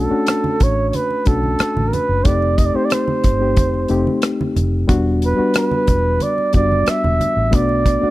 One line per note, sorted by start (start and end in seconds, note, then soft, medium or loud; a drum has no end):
0.00 0.09 A3 loud
0.00 0.11 C#4 medium
0.00 0.11 D4 medium
0.00 0.12 F#4 loud
0.00 0.65 A4 medium
0.09 0.92 A3 medium
0.09 0.93 C#4 medium
0.09 0.93 D4 medium
0.09 0.93 F#4 medium
0.27 cross-stick medium
0.27 closed hi-hat medium
0.27 muted conga soft
0.44 muted conga soft
0.44 high conga medium
0.60 0.90 A1 medium
0.60 0.89 C#5 medium
0.60 kick medium
0.60 closed hi-hat medium
0.60 low conga medium
0.89 0.97 C#5 medium
0.93 1.29 B4 medium
0.93 closed hi-hat medium
0.93 high conga medium
1.11 muted conga soft
1.25 1.56 B1 medium
1.25 1.96 A3 medium
1.25 1.96 C#4 medium
1.25 1.96 D4 medium
1.25 1.97 F#4 medium
1.25 1.90 A4 medium
1.25 kick medium
1.25 closed hi-hat medium
1.43 high conga medium
1.59 muted fingered electric bass stroke soft
1.59 cross-stick medium
1.59 closed hi-hat medium
1.59 muted conga soft
1.77 1.91 A1 medium
1.77 muted conga soft
1.77 high conga medium
1.88 1.95 A#4 medium
1.93 2.27 B4 medium
1.93 closed hi-hat medium
1.93 high conga medium
1.93 low conga medium
2.09 2.24 F#1 medium
2.24 2.70 F1 medium
2.24 2.60 A3 medium
2.24 2.60 C4 medium
2.24 2.60 D#4 medium
2.24 2.61 G4 medium
2.24 2.59 D5 medium
2.24 kick medium
2.24 closed hi-hat medium
2.24 muted conga soft
2.24 low conga medium
2.42 muted conga soft
2.58 2.67 D#5 medium
2.58 kick medium
2.58 closed hi-hat medium
2.66 2.77 D5 medium
2.74 3.21 A3 medium
2.74 3.22 C4 medium
2.74 3.22 D#4 medium
2.74 3.22 G4 medium
2.74 2.86 C5 medium
2.74 muted fingered electric bass stroke soft
2.85 2.94 D5 medium
2.90 4.24 C5 medium
2.90 cross-stick loud
2.90 closed hi-hat medium
2.90 muted conga soft
3.08 high conga medium
3.24 3.57 G1 medium
3.24 kick medium
3.24 closed hi-hat medium
3.24 low conga medium
3.39 3.75 A3 medium
3.39 3.76 C4 medium
3.39 3.76 D#4 medium
3.39 3.76 G4 medium
3.57 3.87 F1 medium
3.57 kick medium
3.57 closed hi-hat medium
3.57 muted conga soft
3.57 high conga medium
3.74 muted conga soft
3.88 4.05 F1 medium
3.88 4.60 A3 medium
3.88 4.60 C4 medium
3.88 4.60 D#4 medium
3.88 4.61 G4 medium
3.88 closed hi-hat medium
4.07 high conga medium
4.22 cross-stick medium
4.22 closed hi-hat medium
4.41 muted conga soft
4.41 high conga medium
4.56 4.86 F1 medium
4.56 closed hi-hat medium
4.56 high conga medium
4.56 low conga medium
4.88 5.34 E1 medium
4.88 5.23 G3 loud
4.88 5.24 B3 medium
4.88 5.24 D4 medium
4.88 5.24 F#4 loud
4.88 kick medium
4.88 closed hi-hat medium
4.88 low conga medium
5.22 5.55 B4 medium
5.22 closed hi-hat medium
5.36 6.19 G3 medium
5.36 6.20 B3 medium
5.36 6.20 D4 medium
5.36 6.20 F#4 medium
5.36 muted fingered electric bass stroke soft
5.54 6.24 B4 medium
5.54 cross-stick loud
5.54 closed hi-hat medium
5.54 muted conga soft
5.71 muted conga soft
5.71 high conga medium
5.87 6.18 E1 medium
5.87 kick medium
5.87 closed hi-hat medium
5.87 low conga medium
6.20 6.55 D5 medium
6.20 closed hi-hat medium
6.20 high conga medium
6.38 muted conga soft
6.53 6.84 F#1 medium
6.53 7.23 G3 medium
6.53 7.24 B3 medium
6.53 7.24 D4 medium
6.53 7.24 F#4 medium
6.53 6.91 D5 medium
6.53 kick medium
6.53 closed hi-hat medium
6.72 high conga medium
6.86 7.57 E5 medium
6.86 cross-stick medium
6.86 closed hi-hat medium
6.86 muted conga soft
7.04 7.19 E1 medium
7.04 muted conga soft
7.04 high conga medium
7.21 closed hi-hat medium
7.21 high conga medium
7.21 low conga medium
7.37 7.53 A1 medium
7.51 7.97 B1 medium
7.51 7.87 A3 medium
7.51 7.87 B3 medium
7.51 7.87 D4 medium
7.51 7.88 F#4 medium
7.51 8.10 D5 medium
7.51 kick medium
7.51 closed hi-hat medium
7.51 muted conga soft
7.51 low conga medium
7.69 muted conga soft
7.86 kick medium
7.86 closed hi-hat medium
8.01 8.10 A3 medium
8.01 8.10 C#4 medium
8.01 8.10 D4 medium
8.01 8.10 F#4 medium
8.01 muted fingered electric bass stroke soft